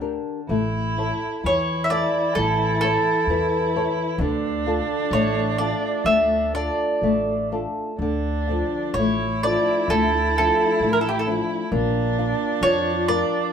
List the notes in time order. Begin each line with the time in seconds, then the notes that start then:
Already playing: D2 D3
0.01 D4 G4 A#4
0.48 A1 A3 E4
0.98 E4 A4 C#5
1.44 E2 E3 E4 C#5
1.84 E5
1.90 E4 A4 D5 E5
2.35 A1 E3 A4
2.81 E4 A4 C#5
3.27 E2 E3
3.76 E4 A4 C#5
4.18 D2 D3 D4
4.66 D4 F4 A4
5.11 A1 A3 C#5
5.58 D4 F4 A4 D5
6.04 D2 A3 E5
6.53 D4 F4 A4 D5
7.02 A1 A3
7.52 D4 F4 A4
7.99 D2 D3 D4
8.49 F3 D4 A4
8.94 A1 E4 C#5
8.99 A3
9.43 F3 D4 A4 D5
9.88 D2 A4
9.92 A3
10.38 F3 D4 A4
10.80 A1 A3
10.93 A#4
11.01 A4
11.09 G4
11.19 A4
11.27 F3 D4 A4
11.72 A#1 A#3 D4
12.18 D4 F4 A#4
12.61 F2 F3 C#5
13.08 F4 A#4 D5